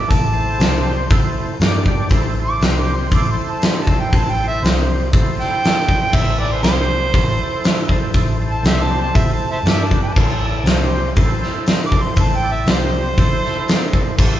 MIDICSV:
0, 0, Header, 1, 5, 480
1, 0, Start_track
1, 0, Key_signature, 0, "minor"
1, 0, Tempo, 502934
1, 95, Time_signature, 4, 2, 24, 8
1, 13742, End_track
2, 0, Start_track
2, 0, Title_t, "Harmonica"
2, 0, Program_c, 0, 22
2, 0, Note_on_c, 0, 86, 92
2, 102, Note_on_c, 0, 81, 125
2, 117, Note_off_c, 0, 86, 0
2, 1028, Note_off_c, 0, 81, 0
2, 2346, Note_on_c, 0, 86, 109
2, 2494, Note_off_c, 0, 86, 0
2, 2678, Note_on_c, 0, 86, 89
2, 2825, Note_on_c, 0, 84, 85
2, 2839, Note_off_c, 0, 86, 0
2, 3011, Note_on_c, 0, 86, 95
2, 3025, Note_off_c, 0, 84, 0
2, 3146, Note_off_c, 0, 86, 0
2, 3165, Note_on_c, 0, 84, 85
2, 3340, Note_on_c, 0, 81, 107
2, 3355, Note_off_c, 0, 84, 0
2, 3493, Note_on_c, 0, 84, 94
2, 3507, Note_off_c, 0, 81, 0
2, 3627, Note_off_c, 0, 84, 0
2, 3650, Note_on_c, 0, 81, 90
2, 3821, Note_on_c, 0, 79, 80
2, 3835, Note_off_c, 0, 81, 0
2, 3974, Note_on_c, 0, 81, 89
2, 3988, Note_off_c, 0, 79, 0
2, 4112, Note_on_c, 0, 79, 103
2, 4127, Note_off_c, 0, 81, 0
2, 4256, Note_off_c, 0, 79, 0
2, 4272, Note_on_c, 0, 76, 102
2, 4427, Note_on_c, 0, 72, 104
2, 4442, Note_off_c, 0, 76, 0
2, 4651, Note_off_c, 0, 72, 0
2, 5154, Note_on_c, 0, 79, 121
2, 5870, Note_on_c, 0, 76, 113
2, 5884, Note_off_c, 0, 79, 0
2, 6093, Note_off_c, 0, 76, 0
2, 6100, Note_on_c, 0, 74, 102
2, 6223, Note_on_c, 0, 72, 97
2, 6238, Note_off_c, 0, 74, 0
2, 6324, Note_off_c, 0, 72, 0
2, 6330, Note_on_c, 0, 72, 127
2, 7732, Note_off_c, 0, 72, 0
2, 8113, Note_on_c, 0, 81, 107
2, 8257, Note_off_c, 0, 81, 0
2, 8270, Note_on_c, 0, 67, 71
2, 8270, Note_on_c, 0, 72, 71
2, 8270, Note_on_c, 0, 76, 101
2, 8330, Note_off_c, 0, 67, 0
2, 8353, Note_off_c, 0, 72, 0
2, 8430, Note_on_c, 0, 81, 105
2, 8444, Note_off_c, 0, 76, 0
2, 8576, Note_off_c, 0, 81, 0
2, 8601, Note_on_c, 0, 81, 116
2, 8747, Note_on_c, 0, 76, 99
2, 8761, Note_off_c, 0, 81, 0
2, 8894, Note_off_c, 0, 76, 0
2, 8908, Note_on_c, 0, 81, 87
2, 9055, Note_off_c, 0, 81, 0
2, 9080, Note_on_c, 0, 72, 68
2, 9080, Note_on_c, 0, 76, 68
2, 9080, Note_on_c, 0, 81, 97
2, 9154, Note_off_c, 0, 76, 0
2, 9159, Note_off_c, 0, 72, 0
2, 9249, Note_on_c, 0, 76, 98
2, 9263, Note_off_c, 0, 81, 0
2, 9397, Note_on_c, 0, 81, 94
2, 9412, Note_off_c, 0, 76, 0
2, 9540, Note_off_c, 0, 81, 0
2, 9573, Note_on_c, 0, 81, 87
2, 10484, Note_off_c, 0, 81, 0
2, 11325, Note_on_c, 0, 86, 97
2, 11472, Note_on_c, 0, 84, 91
2, 11486, Note_off_c, 0, 86, 0
2, 11618, Note_off_c, 0, 84, 0
2, 11650, Note_on_c, 0, 81, 103
2, 11804, Note_on_c, 0, 79, 115
2, 11819, Note_off_c, 0, 81, 0
2, 11952, Note_on_c, 0, 76, 101
2, 11966, Note_off_c, 0, 79, 0
2, 12098, Note_off_c, 0, 76, 0
2, 12124, Note_on_c, 0, 72, 127
2, 13510, Note_off_c, 0, 72, 0
2, 13742, End_track
3, 0, Start_track
3, 0, Title_t, "Tonewheel organ"
3, 0, Program_c, 1, 16
3, 62, Note_on_c, 1, 64, 75
3, 78, Note_on_c, 1, 74, 84
3, 82, Note_on_c, 1, 69, 64
3, 288, Note_off_c, 1, 64, 0
3, 296, Note_off_c, 1, 74, 0
3, 298, Note_off_c, 1, 69, 0
3, 312, Note_on_c, 1, 64, 68
3, 319, Note_on_c, 1, 69, 68
3, 319, Note_on_c, 1, 72, 81
3, 559, Note_on_c, 1, 60, 82
3, 560, Note_off_c, 1, 72, 0
3, 561, Note_on_c, 1, 67, 74
3, 563, Note_off_c, 1, 64, 0
3, 566, Note_off_c, 1, 69, 0
3, 572, Note_on_c, 1, 72, 85
3, 986, Note_off_c, 1, 60, 0
3, 987, Note_off_c, 1, 67, 0
3, 992, Note_off_c, 1, 72, 0
3, 1057, Note_on_c, 1, 64, 90
3, 1059, Note_on_c, 1, 69, 85
3, 1069, Note_on_c, 1, 72, 108
3, 1474, Note_off_c, 1, 64, 0
3, 1475, Note_off_c, 1, 69, 0
3, 1480, Note_off_c, 1, 72, 0
3, 1545, Note_on_c, 1, 67, 89
3, 1548, Note_on_c, 1, 62, 84
3, 1556, Note_on_c, 1, 74, 92
3, 1748, Note_off_c, 1, 67, 0
3, 1750, Note_off_c, 1, 62, 0
3, 1753, Note_off_c, 1, 74, 0
3, 1792, Note_on_c, 1, 62, 75
3, 1794, Note_on_c, 1, 67, 73
3, 1794, Note_on_c, 1, 74, 89
3, 1991, Note_off_c, 1, 62, 0
3, 1992, Note_off_c, 1, 67, 0
3, 1993, Note_off_c, 1, 74, 0
3, 2029, Note_on_c, 1, 64, 79
3, 2034, Note_on_c, 1, 69, 81
3, 2040, Note_on_c, 1, 72, 96
3, 2229, Note_off_c, 1, 64, 0
3, 2232, Note_off_c, 1, 69, 0
3, 2235, Note_off_c, 1, 72, 0
3, 2273, Note_on_c, 1, 64, 68
3, 2289, Note_on_c, 1, 69, 59
3, 2289, Note_on_c, 1, 72, 72
3, 2502, Note_off_c, 1, 64, 0
3, 2509, Note_off_c, 1, 69, 0
3, 2509, Note_off_c, 1, 72, 0
3, 2525, Note_on_c, 1, 60, 72
3, 2527, Note_on_c, 1, 67, 71
3, 2528, Note_on_c, 1, 72, 87
3, 2927, Note_off_c, 1, 60, 0
3, 2928, Note_off_c, 1, 67, 0
3, 2929, Note_off_c, 1, 72, 0
3, 2991, Note_on_c, 1, 64, 81
3, 2994, Note_on_c, 1, 69, 66
3, 2997, Note_on_c, 1, 72, 79
3, 3610, Note_off_c, 1, 64, 0
3, 3612, Note_off_c, 1, 69, 0
3, 3614, Note_off_c, 1, 72, 0
3, 3710, Note_on_c, 1, 64, 67
3, 3712, Note_on_c, 1, 69, 58
3, 3722, Note_on_c, 1, 72, 65
3, 3910, Note_off_c, 1, 64, 0
3, 3911, Note_off_c, 1, 69, 0
3, 3916, Note_off_c, 1, 72, 0
3, 3951, Note_on_c, 1, 64, 69
3, 3956, Note_on_c, 1, 72, 77
3, 3962, Note_on_c, 1, 69, 66
3, 4150, Note_off_c, 1, 64, 0
3, 4152, Note_off_c, 1, 72, 0
3, 4155, Note_off_c, 1, 69, 0
3, 4192, Note_on_c, 1, 64, 74
3, 4192, Note_on_c, 1, 69, 63
3, 4203, Note_on_c, 1, 72, 71
3, 4416, Note_on_c, 1, 60, 74
3, 4421, Note_off_c, 1, 64, 0
3, 4421, Note_off_c, 1, 69, 0
3, 4425, Note_on_c, 1, 67, 70
3, 4426, Note_off_c, 1, 72, 0
3, 4439, Note_on_c, 1, 72, 91
3, 4833, Note_off_c, 1, 60, 0
3, 4838, Note_off_c, 1, 67, 0
3, 4845, Note_off_c, 1, 72, 0
3, 4900, Note_on_c, 1, 64, 95
3, 4911, Note_on_c, 1, 69, 86
3, 4912, Note_on_c, 1, 72, 92
3, 5525, Note_off_c, 1, 64, 0
3, 5531, Note_off_c, 1, 69, 0
3, 5531, Note_off_c, 1, 72, 0
3, 5602, Note_on_c, 1, 72, 69
3, 5603, Note_on_c, 1, 69, 58
3, 5605, Note_on_c, 1, 64, 58
3, 5816, Note_off_c, 1, 69, 0
3, 5816, Note_off_c, 1, 72, 0
3, 5817, Note_off_c, 1, 64, 0
3, 5829, Note_on_c, 1, 72, 87
3, 5830, Note_on_c, 1, 64, 70
3, 5831, Note_on_c, 1, 69, 62
3, 6050, Note_off_c, 1, 64, 0
3, 6050, Note_off_c, 1, 72, 0
3, 6051, Note_off_c, 1, 69, 0
3, 6072, Note_on_c, 1, 64, 71
3, 6077, Note_on_c, 1, 69, 65
3, 6080, Note_on_c, 1, 71, 69
3, 6316, Note_on_c, 1, 60, 80
3, 6321, Note_off_c, 1, 64, 0
3, 6322, Note_on_c, 1, 67, 78
3, 6323, Note_off_c, 1, 69, 0
3, 6325, Note_off_c, 1, 71, 0
3, 6327, Note_on_c, 1, 72, 78
3, 6743, Note_off_c, 1, 60, 0
3, 6746, Note_off_c, 1, 67, 0
3, 6749, Note_off_c, 1, 72, 0
3, 6810, Note_on_c, 1, 69, 66
3, 6811, Note_on_c, 1, 64, 84
3, 6819, Note_on_c, 1, 72, 86
3, 7440, Note_off_c, 1, 69, 0
3, 7441, Note_off_c, 1, 64, 0
3, 7445, Note_off_c, 1, 72, 0
3, 7511, Note_on_c, 1, 64, 76
3, 7523, Note_on_c, 1, 72, 83
3, 7527, Note_on_c, 1, 69, 72
3, 7731, Note_off_c, 1, 64, 0
3, 7737, Note_off_c, 1, 72, 0
3, 7739, Note_off_c, 1, 69, 0
3, 7774, Note_on_c, 1, 64, 85
3, 7779, Note_on_c, 1, 69, 73
3, 7794, Note_on_c, 1, 72, 101
3, 7982, Note_off_c, 1, 64, 0
3, 7985, Note_off_c, 1, 69, 0
3, 7993, Note_off_c, 1, 72, 0
3, 8017, Note_on_c, 1, 64, 70
3, 8019, Note_on_c, 1, 69, 67
3, 8031, Note_on_c, 1, 72, 77
3, 8254, Note_off_c, 1, 64, 0
3, 8255, Note_off_c, 1, 69, 0
3, 8261, Note_off_c, 1, 72, 0
3, 8262, Note_on_c, 1, 60, 82
3, 8274, Note_on_c, 1, 67, 67
3, 8274, Note_on_c, 1, 72, 83
3, 8677, Note_off_c, 1, 60, 0
3, 8683, Note_off_c, 1, 67, 0
3, 8683, Note_off_c, 1, 72, 0
3, 8713, Note_on_c, 1, 64, 67
3, 8725, Note_on_c, 1, 69, 68
3, 8729, Note_on_c, 1, 72, 84
3, 9142, Note_off_c, 1, 64, 0
3, 9148, Note_off_c, 1, 69, 0
3, 9151, Note_off_c, 1, 72, 0
3, 9213, Note_on_c, 1, 62, 67
3, 9216, Note_on_c, 1, 74, 78
3, 9220, Note_on_c, 1, 67, 68
3, 9423, Note_off_c, 1, 62, 0
3, 9424, Note_off_c, 1, 74, 0
3, 9426, Note_off_c, 1, 67, 0
3, 9453, Note_on_c, 1, 62, 62
3, 9454, Note_on_c, 1, 71, 76
3, 9455, Note_on_c, 1, 67, 63
3, 9663, Note_off_c, 1, 62, 0
3, 9663, Note_off_c, 1, 67, 0
3, 9663, Note_off_c, 1, 71, 0
3, 9702, Note_on_c, 1, 64, 67
3, 9712, Note_on_c, 1, 69, 65
3, 9714, Note_on_c, 1, 72, 84
3, 9907, Note_off_c, 1, 64, 0
3, 9912, Note_off_c, 1, 69, 0
3, 9913, Note_off_c, 1, 72, 0
3, 9932, Note_on_c, 1, 69, 56
3, 9933, Note_on_c, 1, 64, 61
3, 9947, Note_on_c, 1, 74, 77
3, 10155, Note_on_c, 1, 60, 91
3, 10172, Note_off_c, 1, 69, 0
3, 10173, Note_off_c, 1, 64, 0
3, 10175, Note_on_c, 1, 72, 104
3, 10177, Note_on_c, 1, 67, 89
3, 10180, Note_off_c, 1, 74, 0
3, 10584, Note_off_c, 1, 60, 0
3, 10594, Note_off_c, 1, 72, 0
3, 10595, Note_off_c, 1, 67, 0
3, 10650, Note_on_c, 1, 64, 91
3, 10660, Note_on_c, 1, 72, 104
3, 10661, Note_on_c, 1, 69, 81
3, 11282, Note_off_c, 1, 64, 0
3, 11287, Note_off_c, 1, 69, 0
3, 11287, Note_off_c, 1, 72, 0
3, 11375, Note_on_c, 1, 64, 57
3, 11376, Note_on_c, 1, 69, 59
3, 11386, Note_on_c, 1, 72, 73
3, 11584, Note_off_c, 1, 64, 0
3, 11585, Note_off_c, 1, 69, 0
3, 11589, Note_off_c, 1, 72, 0
3, 11612, Note_on_c, 1, 64, 70
3, 11620, Note_on_c, 1, 69, 70
3, 11635, Note_on_c, 1, 72, 79
3, 11822, Note_off_c, 1, 64, 0
3, 11826, Note_off_c, 1, 69, 0
3, 11834, Note_off_c, 1, 72, 0
3, 11862, Note_on_c, 1, 69, 60
3, 11863, Note_on_c, 1, 64, 71
3, 11871, Note_on_c, 1, 74, 79
3, 12097, Note_off_c, 1, 69, 0
3, 12098, Note_off_c, 1, 64, 0
3, 12101, Note_on_c, 1, 60, 82
3, 12102, Note_off_c, 1, 74, 0
3, 12112, Note_on_c, 1, 67, 70
3, 12114, Note_on_c, 1, 72, 89
3, 12517, Note_off_c, 1, 60, 0
3, 12522, Note_off_c, 1, 67, 0
3, 12524, Note_off_c, 1, 72, 0
3, 12593, Note_on_c, 1, 64, 77
3, 12599, Note_on_c, 1, 69, 71
3, 12601, Note_on_c, 1, 72, 82
3, 13214, Note_off_c, 1, 64, 0
3, 13216, Note_off_c, 1, 69, 0
3, 13217, Note_off_c, 1, 72, 0
3, 13305, Note_on_c, 1, 64, 79
3, 13311, Note_on_c, 1, 69, 70
3, 13311, Note_on_c, 1, 72, 88
3, 13509, Note_off_c, 1, 64, 0
3, 13512, Note_off_c, 1, 69, 0
3, 13512, Note_off_c, 1, 72, 0
3, 13541, Note_on_c, 1, 64, 88
3, 13551, Note_on_c, 1, 69, 74
3, 13552, Note_on_c, 1, 72, 99
3, 13742, Note_off_c, 1, 64, 0
3, 13742, Note_off_c, 1, 69, 0
3, 13742, Note_off_c, 1, 72, 0
3, 13742, End_track
4, 0, Start_track
4, 0, Title_t, "Picked electric bass"
4, 0, Program_c, 2, 34
4, 102, Note_on_c, 2, 33, 103
4, 544, Note_off_c, 2, 33, 0
4, 569, Note_on_c, 2, 36, 96
4, 1017, Note_off_c, 2, 36, 0
4, 1059, Note_on_c, 2, 33, 84
4, 1279, Note_off_c, 2, 33, 0
4, 1527, Note_on_c, 2, 43, 96
4, 1975, Note_off_c, 2, 43, 0
4, 2013, Note_on_c, 2, 33, 90
4, 2458, Note_off_c, 2, 33, 0
4, 2497, Note_on_c, 2, 36, 77
4, 2940, Note_off_c, 2, 36, 0
4, 2974, Note_on_c, 2, 33, 84
4, 3195, Note_off_c, 2, 33, 0
4, 3940, Note_on_c, 2, 33, 84
4, 4381, Note_off_c, 2, 33, 0
4, 4417, Note_on_c, 2, 36, 89
4, 4860, Note_off_c, 2, 36, 0
4, 4902, Note_on_c, 2, 33, 89
4, 5119, Note_off_c, 2, 33, 0
4, 5850, Note_on_c, 2, 33, 89
4, 6296, Note_off_c, 2, 33, 0
4, 6323, Note_on_c, 2, 36, 86
4, 6772, Note_off_c, 2, 36, 0
4, 6813, Note_on_c, 2, 33, 82
4, 7035, Note_off_c, 2, 33, 0
4, 7769, Note_on_c, 2, 33, 98
4, 8216, Note_off_c, 2, 33, 0
4, 8239, Note_on_c, 2, 36, 82
4, 8691, Note_off_c, 2, 36, 0
4, 8731, Note_on_c, 2, 33, 88
4, 8954, Note_off_c, 2, 33, 0
4, 9194, Note_on_c, 2, 43, 87
4, 9649, Note_off_c, 2, 43, 0
4, 9702, Note_on_c, 2, 33, 86
4, 10144, Note_off_c, 2, 33, 0
4, 10153, Note_on_c, 2, 36, 86
4, 10608, Note_off_c, 2, 36, 0
4, 10663, Note_on_c, 2, 33, 86
4, 10881, Note_off_c, 2, 33, 0
4, 11609, Note_on_c, 2, 33, 82
4, 12057, Note_off_c, 2, 33, 0
4, 12086, Note_on_c, 2, 36, 85
4, 12536, Note_off_c, 2, 36, 0
4, 12571, Note_on_c, 2, 33, 79
4, 12795, Note_off_c, 2, 33, 0
4, 13542, Note_on_c, 2, 33, 92
4, 13742, Note_off_c, 2, 33, 0
4, 13742, End_track
5, 0, Start_track
5, 0, Title_t, "Drums"
5, 101, Note_on_c, 9, 46, 54
5, 102, Note_on_c, 9, 36, 99
5, 196, Note_off_c, 9, 46, 0
5, 197, Note_off_c, 9, 36, 0
5, 573, Note_on_c, 9, 46, 62
5, 585, Note_on_c, 9, 38, 118
5, 668, Note_off_c, 9, 46, 0
5, 681, Note_off_c, 9, 38, 0
5, 1050, Note_on_c, 9, 46, 57
5, 1056, Note_on_c, 9, 36, 111
5, 1146, Note_off_c, 9, 46, 0
5, 1151, Note_off_c, 9, 36, 0
5, 1531, Note_on_c, 9, 46, 54
5, 1544, Note_on_c, 9, 38, 122
5, 1627, Note_off_c, 9, 46, 0
5, 1639, Note_off_c, 9, 38, 0
5, 1773, Note_on_c, 9, 36, 74
5, 1868, Note_off_c, 9, 36, 0
5, 1998, Note_on_c, 9, 46, 52
5, 2012, Note_on_c, 9, 36, 100
5, 2094, Note_off_c, 9, 46, 0
5, 2107, Note_off_c, 9, 36, 0
5, 2493, Note_on_c, 9, 46, 60
5, 2506, Note_on_c, 9, 38, 111
5, 2589, Note_off_c, 9, 46, 0
5, 2601, Note_off_c, 9, 38, 0
5, 2972, Note_on_c, 9, 46, 58
5, 2975, Note_on_c, 9, 36, 100
5, 3067, Note_off_c, 9, 46, 0
5, 3070, Note_off_c, 9, 36, 0
5, 3452, Note_on_c, 9, 46, 62
5, 3465, Note_on_c, 9, 38, 115
5, 3548, Note_off_c, 9, 46, 0
5, 3560, Note_off_c, 9, 38, 0
5, 3696, Note_on_c, 9, 36, 82
5, 3792, Note_off_c, 9, 36, 0
5, 3939, Note_on_c, 9, 36, 99
5, 3943, Note_on_c, 9, 46, 52
5, 4035, Note_off_c, 9, 36, 0
5, 4039, Note_off_c, 9, 46, 0
5, 4433, Note_on_c, 9, 46, 54
5, 4445, Note_on_c, 9, 38, 120
5, 4528, Note_off_c, 9, 46, 0
5, 4540, Note_off_c, 9, 38, 0
5, 4899, Note_on_c, 9, 36, 109
5, 4904, Note_on_c, 9, 46, 57
5, 4995, Note_off_c, 9, 36, 0
5, 4999, Note_off_c, 9, 46, 0
5, 5151, Note_on_c, 9, 38, 34
5, 5247, Note_off_c, 9, 38, 0
5, 5385, Note_on_c, 9, 46, 61
5, 5397, Note_on_c, 9, 38, 106
5, 5480, Note_off_c, 9, 46, 0
5, 5492, Note_off_c, 9, 38, 0
5, 5617, Note_on_c, 9, 36, 83
5, 5712, Note_off_c, 9, 36, 0
5, 5850, Note_on_c, 9, 49, 85
5, 5854, Note_on_c, 9, 36, 110
5, 5945, Note_off_c, 9, 49, 0
5, 5949, Note_off_c, 9, 36, 0
5, 6329, Note_on_c, 9, 46, 57
5, 6341, Note_on_c, 9, 38, 121
5, 6424, Note_off_c, 9, 46, 0
5, 6437, Note_off_c, 9, 38, 0
5, 6814, Note_on_c, 9, 36, 108
5, 6817, Note_on_c, 9, 46, 62
5, 6910, Note_off_c, 9, 36, 0
5, 6913, Note_off_c, 9, 46, 0
5, 7292, Note_on_c, 9, 46, 60
5, 7305, Note_on_c, 9, 38, 122
5, 7388, Note_off_c, 9, 46, 0
5, 7400, Note_off_c, 9, 38, 0
5, 7532, Note_on_c, 9, 36, 79
5, 7627, Note_off_c, 9, 36, 0
5, 7767, Note_on_c, 9, 46, 52
5, 7772, Note_on_c, 9, 36, 102
5, 7862, Note_off_c, 9, 46, 0
5, 7867, Note_off_c, 9, 36, 0
5, 8250, Note_on_c, 9, 46, 58
5, 8262, Note_on_c, 9, 38, 120
5, 8345, Note_off_c, 9, 46, 0
5, 8358, Note_off_c, 9, 38, 0
5, 8734, Note_on_c, 9, 46, 56
5, 8736, Note_on_c, 9, 36, 109
5, 8829, Note_off_c, 9, 46, 0
5, 8831, Note_off_c, 9, 36, 0
5, 9216, Note_on_c, 9, 46, 56
5, 9228, Note_on_c, 9, 38, 106
5, 9311, Note_off_c, 9, 46, 0
5, 9324, Note_off_c, 9, 38, 0
5, 9461, Note_on_c, 9, 36, 80
5, 9556, Note_off_c, 9, 36, 0
5, 9700, Note_on_c, 9, 36, 110
5, 9701, Note_on_c, 9, 49, 76
5, 9796, Note_off_c, 9, 36, 0
5, 9797, Note_off_c, 9, 49, 0
5, 10175, Note_on_c, 9, 46, 58
5, 10187, Note_on_c, 9, 38, 122
5, 10270, Note_off_c, 9, 46, 0
5, 10283, Note_off_c, 9, 38, 0
5, 10653, Note_on_c, 9, 46, 54
5, 10659, Note_on_c, 9, 36, 100
5, 10749, Note_off_c, 9, 46, 0
5, 10754, Note_off_c, 9, 36, 0
5, 10906, Note_on_c, 9, 38, 36
5, 11002, Note_off_c, 9, 38, 0
5, 11133, Note_on_c, 9, 46, 68
5, 11145, Note_on_c, 9, 38, 119
5, 11228, Note_off_c, 9, 46, 0
5, 11240, Note_off_c, 9, 38, 0
5, 11376, Note_on_c, 9, 36, 86
5, 11471, Note_off_c, 9, 36, 0
5, 11608, Note_on_c, 9, 46, 60
5, 11615, Note_on_c, 9, 36, 88
5, 11703, Note_off_c, 9, 46, 0
5, 11710, Note_off_c, 9, 36, 0
5, 12087, Note_on_c, 9, 46, 61
5, 12099, Note_on_c, 9, 38, 120
5, 12182, Note_off_c, 9, 46, 0
5, 12195, Note_off_c, 9, 38, 0
5, 12577, Note_on_c, 9, 36, 113
5, 12577, Note_on_c, 9, 46, 56
5, 12672, Note_off_c, 9, 46, 0
5, 12673, Note_off_c, 9, 36, 0
5, 12828, Note_on_c, 9, 38, 35
5, 12924, Note_off_c, 9, 38, 0
5, 13057, Note_on_c, 9, 46, 58
5, 13069, Note_on_c, 9, 38, 121
5, 13152, Note_off_c, 9, 46, 0
5, 13165, Note_off_c, 9, 38, 0
5, 13298, Note_on_c, 9, 36, 83
5, 13394, Note_off_c, 9, 36, 0
5, 13536, Note_on_c, 9, 57, 86
5, 13538, Note_on_c, 9, 36, 101
5, 13632, Note_off_c, 9, 57, 0
5, 13634, Note_off_c, 9, 36, 0
5, 13742, End_track
0, 0, End_of_file